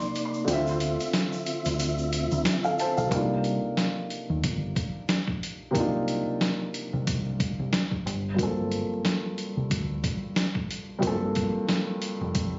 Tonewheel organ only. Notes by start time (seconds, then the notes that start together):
Already playing: C3 A#3 D#4 D5
0.46 D3 C4 F4 E5